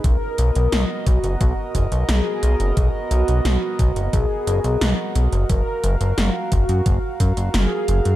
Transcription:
<<
  \new Staff \with { instrumentName = "Analog synth pad" } { \time 4/4 \key ces \lydian \tempo 4 = 88 <b fis' ais' dis''>1~ | <b fis' ais' dis''>1 | <bes' f''>1 | }
  \new Staff \with { instrumentName = "Analog polysynth" } { \time 4/4 \key ces \lydian ais'4. fis'4. aes'4~ | aes'8 fis'4. aes'2 | bes'4. ges'4. aes'4 | }
  \new Staff \with { instrumentName = "Analog synth bass" } { \clef bass \time 4/4 \key ces \lydian b,,16 r16 b,,16 b,,16 b,,16 r16 b,,16 fis,,16 b,,16 r16 fis,,16 b,,16 b,,16 r16 b,,16 fis,,16 | b,,16 r16 b,,16 b,,16 b,,16 r16 b,,16 fis,,16 b,,16 r16 fis,,16 b,,16 b,,16 r16 b,,16 fis,,16 | ges,,16 r16 ges,,16 ges,,16 ges,,16 r16 ges,,16 ges,16 ges,,16 r16 ges,16 ges,,16 ges,,16 r16 ges,,16 ges,16 | }
  \new DrumStaff \with { instrumentName = "Drums" } \drummode { \time 4/4 <hh bd>8 hh16 hh16 <hh sn>8 <hh bd>16 hh16 <hh bd>8 <hh bd>16 hh16 <hh sn>8 hh16 hh16 | <hh bd>8 hh16 hh16 <hh sn>8 <hh bd>16 hh16 <hh bd>8 hh16 hh16 <hh sn>8 hh16 hh16 | <hh bd>8 hh16 hh16 <hh sn>8 <hh bd>16 hh16 <hh bd>8 <hh bd>16 hh16 <hh sn>8 hh16 hh16 | }
>>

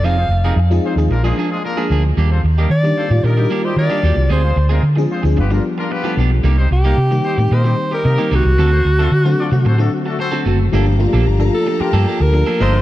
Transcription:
<<
  \new Staff \with { instrumentName = "String section" } { \time 4/4 \key g \minor \tempo 4 = 112 r1 | r1 | r1 | r1 |
r1 | <g' f'' a'' bes''>1 | }
  \new Staff \with { instrumentName = "Alto saxophone" } { \time 4/4 \key g \minor f''4 r2. | r4 d''4 bes'8. c''16 d''4 | c''4 r2. | r8 g'4. c''8. bes'8. fis'8~ |
fis'2. r4 | r4. a'8 g'8. bes'8. c''8 | }
  \new Staff \with { instrumentName = "Horn section" } { \time 4/4 \key g \minor r16 <c' f' aes' c''>16 r16 <bes ees' g' bes'>16 r8 <c' f' aes' c''>16 r16 <bes d' f' bes'>16 <aes d' f' aes'>16 r16 <aes d' f' aes'>16 <bes d' f' bes'>8 r8 | r16 <c' f' a' c''>16 r16 <bes ees' g' bes'>16 r8 <c' f' a' c''>16 r16 <bes ees' g' bes'>16 <g ees' g'>16 r16 <g ees' g'>16 <bes ees' g' bes'>8 r8 | r16 <c' f' aes' c''>16 r16 <bes ees' aes' bes'>16 r8 <c' f' aes' c''>16 r16 <b f' g' b'>16 <bes d' f' bes'>16 r16 <bes d' f' bes'>16 <b f' g' b'>8 r8 | r16 <c' ees' g' c''>16 r16 <bes ees' g' bes'>16 r8 <c' ees' g' c''>16 r16 <bes ees' g' bes'>16 <g c' ees' g'>16 r16 <g c' ees' g'>16 <bes ees' g' bes'>8 r8 |
r16 <c' fis' a' c''>16 r16 <a d' fis' a'>16 r8 <d' fis' a' d''>16 r16 <c' fis' a' c''>16 <a d' fis' a'>16 r16 <a d' fis' a'>16 <c' fis' a' c''>8 r8 | r2 <bes d' f' bes'>16 r4 r16 <bes ees' f' bes'>8 | }
  \new Staff \with { instrumentName = "Clean electric guitar" } { \time 4/4 \key g \minor <f c' ees' aes'>16 r8 <f c' ees' aes'>16 r4 r16 <f bes d' aes'>16 <f bes d' aes'>16 r8 <f bes d' aes'>16 <f bes d' aes'>16 r16 | <g bes d' g'>16 r8 <g bes d' g'>16 r4. <g bes d' g'>16 r8 <g bes d' g'>16 <g bes d' g'>16 r16 | <aes c' f' aes'>16 r8 <aes c' f' aes'>16 r2 r16 <f b d' g'>16 <f b d' g'>16 r16 | <g bes ees' g'>16 r8 <g bes ees' g'>16 r2 r16 <g bes ees' g'>16 <g bes ees' g'>16 r16 |
<a c' fis' a'>16 r8 <a c' fis' a'>16 r2 r16 <a c' fis' a'>16 <a c' fis' a'>16 r16 | <f bes d' a'>16 r8 <f bes d' a'>16 r4 r16 <f bes d' a'>16 <f bes d' a'>16 r8 <f bes d' a'>16 <f bes d' a'>16 r16 | }
  \new Staff \with { instrumentName = "FM electric piano" } { \time 4/4 \key g \minor r4 r16 <f aes c' ees' aes'>8 <f aes c' ees' aes'>16 r16 <f aes bes d' aes'>8. r16 <f aes bes d' aes'>8. | r4 r16 <ees g bes d' g'>8 <ees g bes d' f'>8 <ees g bes d' fis' g'>8. r16 <ees g bes d' g'>8. | r4 r16 <f aes c' d' aes'>8 <f aes c' d' aes'>16 r16 <f g b d' g'>8. r16 <f g a b d' a'>8. | r4 r16 <ees g bes c' g'>8 <ees g bes c' g'>8 <ees g bes c' g'>8. r16 <ees g bes c' g'>8. |
r4 r16 <d fis a c' fis'>8 <d fis a c' fis'>8 <d fis a c' fis'>8. r16 <d fis a c' fis'>8. | <f a bes d' g'>8 <f a bes d' f'>8. <f a bes d' a'>8 <f a bes d' g'>4 r16 <f a bes d' a'>8 <f a bes d' a'>8 | }
  \new Staff \with { instrumentName = "Fingered electric bass" } { \clef bass \time 4/4 \key g \minor f,,8 f,,8 f,8 r16 ees,16 bes,,8 r4 d,8 | ees,8 ees,8 ees8 r16 a,16 bes,8 r8 ees16 r16 ees,16 c,16 | d,8 d,8 d8 r16 d,16 g,,8 r4 b,,8 | c,8 c,8 c8 r16 a,16 bes,8 r8 c16 r16 c,16 c,16 |
d,8 d,8 d8 r16 c16 a,8 r4 fis,,8 | g,,8. bes,,16 g,,8 r8. g,16 r16 d,8 r16 g,,8 | }
>>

